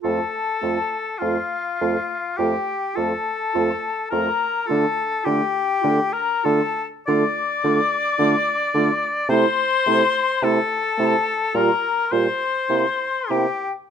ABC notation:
X:1
M:4/4
L:1/16
Q:1/4=52
K:F
V:1 name="Flute"
a4 f4 g2 a4 b2 | a2 g3 b a z d'8 | c'4 a4 b2 c'4 g z |]
V:2 name="Oboe"
A4 F4 G2 A4 B2 | A2 G3 B A z d8 | c4 A4 B2 c4 G z |]
V:3 name="Clarinet"
F2 F2 F2 F2 F2 F2 F2 F2 | F2 F2 F2 F2 F2 F2 F2 F2 | E2 E2 E2 E2 F2 F2 E2 E2 |]
V:4 name="French horn"
A,2 A,2 A,2 A,2 A,2 A,2 A,2 A,2 | A,2 A,2 A,2 A,2 A,2 A,2 A,2 A,2 | A,2 A,2 A,2 A,2 G,2 G,2 B,2 B,2 |]
V:5 name="Bassoon" clef=bass
F,,2 F,,2 F,,2 F,,2 F,,2 F,,2 F,,2 F,,2 | D,2 D,2 D,2 D,2 D,2 D,2 D,2 D,2 | C,2 C,2 C,2 C,2 B,,2 B,,2 C,2 C,2 |]